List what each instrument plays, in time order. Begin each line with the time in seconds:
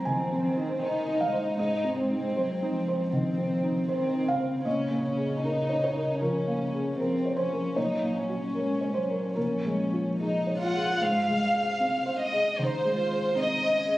Already playing: felt piano G#2 C4 D#4 C5 D#5 A#5
0.04 felt piano D#3 G#5, cello F3, violin section C4
0.32 felt piano C4
0.43 cello D#3
0.57 felt piano D#4
0.82 cello D#3, violin section D#4, felt piano C5
1.08 felt piano D#4
1.20 cello G#3, felt piano F5
1.32 felt piano C5
1.56 felt piano G#2 D#5, violin section D#4
1.84 felt piano C4
1.95 violin section C4
2.11 felt piano D#4
2.36 cello F#3, felt piano C5
2.63 felt piano D#4
2.73 cello F3
2.88 felt piano C5
3.10 felt piano D#3, violin section C4
3.38 felt piano C4
3.64 felt piano D#4
3.87 cello D#3, violin section C4, felt piano C5
4.15 felt piano D#4
4.28 cello C#3, felt piano F5
4.40 felt piano C5
4.62 felt piano A#2 D#5, violin section C#4
4.91 felt piano A#3
5.01 violin section C#4
5.16 felt piano G#4
5.38 violin section D#4
5.44 felt piano A#4
5.69 felt piano C#5
5.84 felt piano C#5
5.96 felt piano A#4
6.20 felt piano F3 A#4, violin section C#4
6.48 felt piano A#3
6.73 felt piano G#4
6.98 cello F3, violin section C4, felt piano A#4
7.25 felt piano C#5
7.36 violin section C#4, felt piano C5
7.52 felt piano A#4
7.76 felt piano A#2 C#5, cello F#3, violin section D#4
8.03 felt piano A#3
8.18 violin section C#4
8.29 felt piano F#4
8.55 cello G#3, felt piano A#4
8.81 felt piano C#5
8.94 cello F#3, felt piano C5
9.10 felt piano A#4
9.35 felt piano A#2 A#4, cello F3, violin section C#4
9.66 felt piano G#3
9.93 felt piano F4
10.19 violin section D#4, felt piano G#4
10.47 felt piano C#5
10.61 violin section F4 F#5
10.74 felt piano G#4
11.01 felt piano G#2, violin section F5
11.28 felt piano G#3
11.54 felt piano G#4
11.80 felt piano C4
12.06 felt piano C5
12.21 violin section D#5
12.32 felt piano G#4
12.58 felt piano D#3, cello D#4, violin section C5
12.85 felt piano G#3
12.97 cello F4
13.11 felt piano G#4
13.35 felt piano C4, cello D#4, violin section D#5
13.61 felt piano C5
13.72 cello C#4
13.86 felt piano G#4